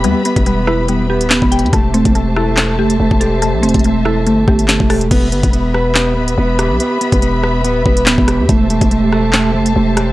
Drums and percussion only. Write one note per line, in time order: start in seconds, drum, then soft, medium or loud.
0.04 closed hi-hat medium
0.25 closed hi-hat medium
0.36 kick loud
0.36 closed hi-hat medium
0.46 closed hi-hat medium
0.67 cross-stick medium
0.88 closed hi-hat medium
1.21 closed hi-hat medium
1.30 snare loud
1.30 clap medium
1.42 kick medium
1.52 closed hi-hat medium
1.59 closed hi-hat medium
1.66 closed hi-hat soft
1.73 kick loud
1.73 closed hi-hat medium
1.94 closed hi-hat medium
2.05 kick loud
2.05 closed hi-hat medium
2.15 closed hi-hat medium
2.36 cross-stick medium
2.57 snare loud
2.57 clap medium
2.57 closed hi-hat medium
2.90 closed hi-hat medium
3.11 kick medium
3.21 closed hi-hat medium
3.42 closed hi-hat medium
3.63 closed hi-hat medium
3.69 closed hi-hat medium
3.74 kick loud
3.74 closed hi-hat medium
3.79 closed hi-hat medium
3.84 closed hi-hat medium
4.06 cross-stick medium
4.27 closed hi-hat medium
4.48 kick medium
4.59 closed hi-hat medium
4.68 snare loud
4.68 clap loud
4.80 kick medium
4.90 cross-stick medium
4.90 closed hi-hat soft
4.90 open hi-hat medium
5.01 closed hi-hat medium
5.11 kick loud
5.11 closed hi-hat medium
5.11 crash loud
5.32 closed hi-hat medium
5.43 kick loud
5.43 closed hi-hat medium
5.53 closed hi-hat medium
5.74 cross-stick medium
5.95 snare loud
5.95 clap medium
5.95 closed hi-hat medium
6.28 closed hi-hat medium
6.59 cross-stick loud
6.59 closed hi-hat medium
6.80 closed hi-hat medium
7.01 closed hi-hat medium
7.12 kick loud
7.12 closed hi-hat medium
7.22 closed hi-hat medium
7.43 cross-stick medium
7.65 closed hi-hat medium
7.86 kick medium
7.97 closed hi-hat medium
8.06 snare loud
8.06 clap loud
8.18 kick loud
8.28 cross-stick loud
8.28 closed hi-hat medium
8.49 kick loud
8.49 closed hi-hat medium
8.70 closed hi-hat medium
8.81 kick loud
8.81 closed hi-hat medium
8.91 closed hi-hat medium
9.12 cross-stick medium
9.33 snare loud
9.33 clap medium
9.33 closed hi-hat medium
9.66 closed hi-hat medium
9.97 cross-stick loud
9.97 closed hi-hat medium